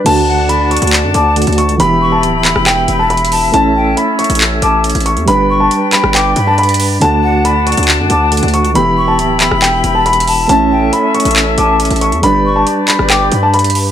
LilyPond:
<<
  \new Staff \with { instrumentName = "Grand piano" } { \time 4/4 \key d \major \tempo 4 = 138 a''4 b''8 cis'''8 r8 d'''4 cis'''8 | b''8. a''8. b''8 g''8. a''16 b''4 | a''4 b''8 cis'''8 r8 d'''4 cis'''8 | b''8. a''8. b''8 g''8. a''16 b''4 |
a''4 b''8 cis'''8 r8 d'''4 cis'''8 | b''8. a''8. b''8 g''8. a''16 b''4 | a''4 b''8 cis'''8 r8 d'''4 cis'''8 | b''8. a''8. b''8 g''8. a''16 b''4 | }
  \new Staff \with { instrumentName = "Flute" } { \time 4/4 \key d \major r8 fis''8 r4. a''8 r4 | r8 cis'''8 r4. b''4 a''8 | r8 g''8 r4. a''8 r4 | r8 cis'''8 r4 d'''8 b''4. |
r8 fis''8 r4. a''8 r4 | r8 cis'''8 r4. b''4 a''8 | r8 g''8 r4. a''8 r4 | r8 cis'''8 r4 d'''8 b''4. | }
  \new Staff \with { instrumentName = "Flute section" } { \time 4/4 \key d \major <d' d'' fis'' a''>1 | <e' e'' g'' b''>1 | <cis' a'>1 | <b' d'' g''>1 |
<d' fis'' a''>1 | <e' e'' g'' b''>1 | <cis' a' e''>1 | <g' b' d''>1 | }
  \new Staff \with { instrumentName = "Synth keys" } { \time 4/4 \key d \major <d a fis'>2. <d a fis'>4 | <e b g'>1 | <a cis' e'>1 | <g d' b'>1 |
<d a fis'>2. <d a fis'>4 | <e b g'>1 | <a cis' e'>1 | <g d' b'>1 | }
  \new Staff \with { instrumentName = "808-style bass" } { \clef bass \time 4/4 \key d \major d,4.~ d,16 d,8 fis,16 d,8. d,8 cis,16 | e,,4 d,,8. e,,8. e,,4. | a,,4 r8. a,,8. a,,8. a,,8 e,16 | g,,4 r8. g,,8. g,4. |
d,4.~ d,16 d,8 fis,16 d,8. d,8 cis,16 | e,,4 d,,8. e,,8. e,,4. | a,,4 r8. a,,8. a,,8. a,,8 e,16 | g,,4 r8. g,,8. g,4. | }
  \new DrumStaff \with { instrumentName = "Drums" } \drummode { \time 4/4 <cymc hh>4 hh8 hh32 hh32 hh32 hh32 <hc hh>8 hh8 hh32 hh32 hh32 hh32 hh16 hh16 | hh4 hh8 <hc hh>16 ss16 <hc hh>8 hh8 \tuplet 3/2 { hh16 hh16 hh16 hho16 r16 r16 } | hh4 hh8 hh32 hh32 hh32 hh32 <hc hh>8 hh8 hh32 hh32 hh32 hh32 hh16 hh16 | hh4 hh8 <hc hh>16 ss16 <hc hh>8 hh8 hh32 hh32 hh32 hh32 hho8 |
hh4 hh8 hh32 hh32 hh32 hh32 <hc hh>8 hh8 hh32 hh32 hh32 hh32 hh16 hh16 | hh4 hh8 <hc hh>16 ss16 <hc hh>8 hh8 \tuplet 3/2 { hh16 hh16 hh16 hho16 r16 r16 } | hh4 hh8 hh32 hh32 hh32 hh32 <hc hh>8 hh8 hh32 hh32 hh32 hh32 hh16 hh16 | hh4 hh8 <hc hh>16 ss16 <hc hh>8 hh8 hh32 hh32 hh32 hh32 hho8 | }
>>